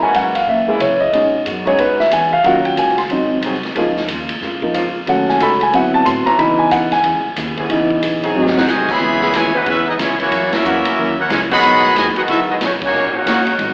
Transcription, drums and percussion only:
0.14 hi-hat pedal, ride
0.35 ride
0.80 hi-hat pedal, ride
1.13 ride
1.46 hi-hat pedal, ride
1.67 ride
1.78 ride
2.00 snare
2.11 hi-hat pedal, ride
2.44 ride
2.65 ride
2.77 hi-hat pedal, ride
2.89 snare
2.98 snare, ride
3.10 ride
3.42 hi-hat pedal, ride
3.54 snare
3.63 snare, ride
3.75 ride
3.97 snare
4.08 hi-hat pedal, ride
4.29 ride
4.41 snare
4.62 kick
4.74 hi-hat pedal, ride
5.07 ride
5.29 snare
5.40 hi-hat pedal, ride
5.61 ride
5.73 ride
6.06 hi-hat pedal, ride
6.27 ride
6.39 ride
6.71 hi-hat pedal, ride
6.92 snare, ride
7.04 ride
7.36 snare, hi-hat pedal, ride
7.57 kick, ride
7.70 ride
7.90 kick
8.02 hi-hat pedal, ride
8.23 ride
8.47 snare
8.57 snare
8.68 snare, hi-hat pedal
8.89 kick, crash
9.21 snare
9.33 snare, hi-hat pedal, ride
9.66 ride
9.99 snare, hi-hat pedal, ride
10.20 ride
10.32 ride
10.52 snare, ride
10.65 hi-hat pedal
10.85 ride
11.30 snare, hi-hat pedal, ride
11.51 ride
11.63 ride
11.85 snare
11.96 snare, hi-hat pedal, ride
12.16 ride
12.28 ride
12.61 snare, hi-hat pedal, ride
12.82 kick, crash
13.27 snare, hi-hat pedal, ride
13.47 ride
13.59 ride

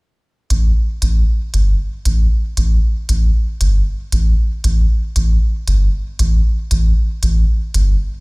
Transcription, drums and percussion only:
0.50 closed hi-hat
1.02 closed hi-hat
1.54 closed hi-hat
2.05 closed hi-hat
2.57 closed hi-hat
3.09 closed hi-hat
3.61 closed hi-hat
4.12 closed hi-hat
4.64 closed hi-hat
5.16 closed hi-hat
5.68 closed hi-hat
6.19 closed hi-hat
6.71 closed hi-hat
7.23 closed hi-hat
7.74 closed hi-hat

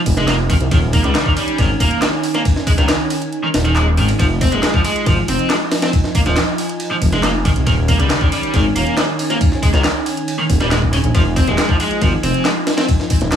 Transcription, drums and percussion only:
0.06 kick, open hi-hat, ride
0.17 snare, closed hi-hat
0.28 snare, clap, closed hi-hat, ride
0.50 kick, open hi-hat, ride
0.61 closed hi-hat
0.71 kick, closed hi-hat, ride
0.93 kick, open hi-hat, ride
1.04 closed hi-hat
1.15 snare, clap, closed hi-hat, ride
1.26 kick
1.37 open hi-hat, ride
1.48 closed hi-hat
1.58 kick, closed hi-hat, ride
1.80 kick, open hi-hat, ride
1.91 closed hi-hat
2.02 snare, clap, closed hi-hat, ride
2.23 open hi-hat, ride
2.34 snare, closed hi-hat
2.45 kick, closed hi-hat, ride
2.56 snare
2.67 kick, open hi-hat, ride
2.78 snare, closed hi-hat
2.89 snare, clap, closed hi-hat, ride
3.10 open hi-hat, ride
3.22 closed hi-hat
3.33 closed hi-hat
3.54 snare, open hi-hat, ride
3.65 closed hi-hat
3.76 clap, closed hi-hat
3.97 open hi-hat
4.08 closed hi-hat, ride
4.19 kick, closed hi-hat, ride
4.41 kick, open hi-hat, ride
4.52 closed hi-hat
4.63 snare, clap, closed hi-hat, ride
4.74 kick
4.85 open hi-hat, ride
4.96 closed hi-hat
5.06 kick, closed hi-hat, ride
5.28 open hi-hat, ride
5.39 closed hi-hat
5.50 snare, clap, closed hi-hat, ride
5.72 snare, open hi-hat, ride
5.82 snare, closed hi-hat, ride
5.93 kick, closed hi-hat, ride
6.04 snare
6.15 kick, open hi-hat, ride
6.26 snare, closed hi-hat
6.36 snare, clap, closed hi-hat, ride
6.58 open hi-hat, ride
6.69 closed hi-hat
6.80 closed hi-hat, ride
7.02 kick, open hi-hat, ride
7.13 snare, closed hi-hat
7.23 snare, clap, closed hi-hat, ride
7.45 kick, open hi-hat, ride
7.56 closed hi-hat
7.67 kick, closed hi-hat, ride
7.88 kick, open hi-hat, ride
8.00 closed hi-hat
8.10 snare, clap, closed hi-hat, ride
8.21 kick
8.32 open hi-hat, ride
8.43 closed hi-hat
8.54 kick, closed hi-hat, ride
8.76 open hi-hat, ride
8.87 closed hi-hat
8.97 snare, clap, closed hi-hat, ride
9.19 open hi-hat, ride
9.30 snare, closed hi-hat
9.41 kick, closed hi-hat, ride
9.52 snare
9.63 kick, open hi-hat, ride
9.74 snare, closed hi-hat
9.84 snare, clap, closed hi-hat, ride
10.06 open hi-hat, ride
10.17 closed hi-hat
10.28 closed hi-hat, ride
10.50 kick, open hi-hat, ride
10.61 snare, closed hi-hat
10.71 snare, clap, closed hi-hat, ride
10.82 kick
10.93 open hi-hat, ride
11.04 closed hi-hat
11.15 kick, closed hi-hat, ride
11.36 kick, open hi-hat, ride
11.47 closed hi-hat
11.58 snare, clap, closed hi-hat, ride
11.69 kick
11.80 open hi-hat, ride
11.91 closed hi-hat
12.02 kick, closed hi-hat, ride
12.23 open hi-hat, ride
12.34 closed hi-hat
12.45 snare, clap, closed hi-hat, ride
12.67 snare, open hi-hat, ride
12.78 snare, closed hi-hat, ride
12.88 kick, closed hi-hat, ride
13.00 snare
13.10 kick, open hi-hat, ride
13.21 snare, closed hi-hat
13.32 snare, clap, closed hi-hat, ride

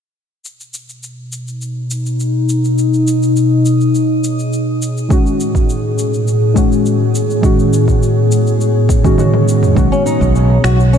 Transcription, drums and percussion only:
0.45 cabasa
0.60 cabasa
0.74 cabasa
0.89 cabasa
1.03 cabasa
1.32 cabasa
1.48 cabasa
1.61 cabasa
1.91 cabasa
2.06 cabasa
2.20 cabasa
2.49 cabasa
2.65 cabasa
2.78 cabasa
2.94 cabasa
3.07 cabasa
3.23 cabasa
3.36 cabasa
3.65 cabasa
3.81 cabasa
3.95 cabasa
4.24 cabasa
4.39 cabasa
4.53 cabasa
4.82 cabasa
4.97 cabasa
5.10 kick, cabasa
5.26 cabasa
5.40 cabasa
5.55 kick, cabasa
5.69 cabasa
5.99 cabasa
6.14 cabasa
6.28 cabasa
6.56 kick, cabasa
6.72 cabasa
6.86 cabasa
7.15 cabasa
7.30 cabasa
7.43 kick, cabasa
7.59 cabasa
7.73 cabasa
7.88 kick, cabasa
8.03 cabasa
8.32 cabasa
8.47 cabasa
8.61 cabasa
8.89 kick, cabasa
9.04 kick, cabasa
9.18 high tom, cabasa
9.34 high tom
9.48 cabasa
9.63 mid tom, cabasa
9.77 kick, cabasa
9.93 cabasa
10.06 cabasa
10.21 kick, cabasa
10.36 cabasa
10.64 finger snap, cabasa
10.80 cabasa
10.94 cabasa

